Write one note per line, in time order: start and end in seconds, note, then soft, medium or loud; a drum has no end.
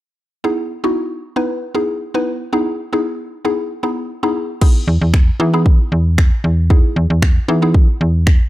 0.44 0.71 B3 medium
0.44 0.72 D#4 medium
0.44 0.72 E4 medium
0.44 0.72 G#4 medium
0.84 1.20 B3 medium
0.84 1.20 D#4 medium
0.84 1.20 E4 medium
0.84 1.20 F#4 medium
1.36 1.63 B3 medium
1.36 1.63 D#4 medium
1.36 1.64 E4 medium
1.36 1.64 B4 medium
1.75 2.02 B3 medium
1.75 2.02 D#4 medium
1.75 2.02 E4 medium
1.75 2.02 G#4 medium
2.14 2.42 B3 medium
2.14 2.42 D#4 medium
2.14 2.42 E4 medium
2.14 2.42 B4 medium
2.53 2.80 B3 medium
2.53 2.80 D#4 medium
2.53 2.80 E4 medium
2.53 2.80 G#4 medium
2.93 3.28 B3 medium
2.93 3.29 D#4 medium
2.93 3.29 E4 medium
2.93 3.29 G#4 medium
3.45 3.72 B3 medium
3.45 3.72 D#4 medium
3.45 3.72 E4 medium
3.45 3.72 G#4 medium
3.83 4.11 B3 medium
3.83 4.11 D#4 medium
3.83 4.11 E4 medium
3.83 4.11 G#4 medium
4.23 4.50 B3 medium
4.23 4.50 D#4 medium
4.23 4.50 E4 medium
4.23 4.51 G#4 loud
4.61 5.16 B3 medium
4.61 5.16 D#4 medium
4.61 5.16 E4 medium
4.61 5.16 G#4 loud
4.61 kick loud
4.61 crash medium
4.88 4.98 E2 medium
5.01 5.30 E2 medium
5.14 finger snap loud
5.14 kick loud
5.40 5.79 E3 loud
5.40 5.49 B3 medium
5.40 5.49 D#4 medium
5.40 5.50 E4 medium
5.40 5.50 G#4 medium
5.54 6.26 B3 medium
5.54 6.26 D#4 medium
5.54 6.26 E4 medium
5.54 6.26 G#4 loud
5.66 kick loud
5.92 6.31 E2 medium
6.18 finger snap loud
6.18 kick loud
6.44 6.83 E2 medium
6.70 7.25 B3 medium
6.70 7.25 D#4 medium
6.70 7.25 E4 medium
6.70 7.25 G#4 loud
6.70 kick loud
6.96 7.07 E2 medium
7.10 7.39 E2 medium
7.22 finger snap loud
7.22 kick loud
7.48 7.88 E3 loud
7.48 7.58 B3 medium
7.48 7.58 D#4 medium
7.48 7.58 E4 medium
7.48 7.58 G#4 loud
7.62 8.35 B3 medium
7.62 8.35 D#4 medium
7.62 8.35 E4 medium
7.62 8.35 G#4 medium
7.74 kick loud
8.01 8.40 E2 medium
8.27 finger snap loud
8.27 kick loud